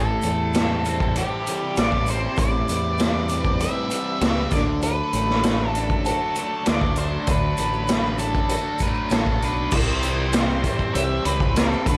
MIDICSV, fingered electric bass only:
0, 0, Header, 1, 2, 480
1, 0, Start_track
1, 0, Tempo, 612245
1, 1865, Time_signature, 4, 2, 24, 8
1, 9384, End_track
2, 0, Start_track
2, 0, Title_t, "Fingered electric bass"
2, 0, Program_c, 0, 33
2, 0, Note_on_c, 0, 33, 100
2, 134, Note_off_c, 0, 33, 0
2, 187, Note_on_c, 0, 40, 70
2, 948, Note_off_c, 0, 40, 0
2, 1392, Note_on_c, 0, 33, 85
2, 1771, Note_off_c, 0, 33, 0
2, 1868, Note_on_c, 0, 33, 102
2, 2058, Note_off_c, 0, 33, 0
2, 2109, Note_on_c, 0, 40, 74
2, 2871, Note_off_c, 0, 40, 0
2, 3303, Note_on_c, 0, 37, 86
2, 3495, Note_off_c, 0, 37, 0
2, 3544, Note_on_c, 0, 38, 84
2, 3926, Note_off_c, 0, 38, 0
2, 4023, Note_on_c, 0, 33, 82
2, 4787, Note_off_c, 0, 33, 0
2, 5234, Note_on_c, 0, 38, 87
2, 5613, Note_off_c, 0, 38, 0
2, 5704, Note_on_c, 0, 38, 98
2, 5896, Note_off_c, 0, 38, 0
2, 5950, Note_on_c, 0, 33, 74
2, 6711, Note_off_c, 0, 33, 0
2, 7143, Note_on_c, 0, 33, 71
2, 7360, Note_off_c, 0, 33, 0
2, 7384, Note_on_c, 0, 35, 67
2, 7601, Note_off_c, 0, 35, 0
2, 7623, Note_on_c, 0, 36, 94
2, 8385, Note_off_c, 0, 36, 0
2, 8584, Note_on_c, 0, 36, 91
2, 8774, Note_off_c, 0, 36, 0
2, 8820, Note_on_c, 0, 37, 82
2, 9202, Note_off_c, 0, 37, 0
2, 9301, Note_on_c, 0, 38, 89
2, 9384, Note_off_c, 0, 38, 0
2, 9384, End_track
0, 0, End_of_file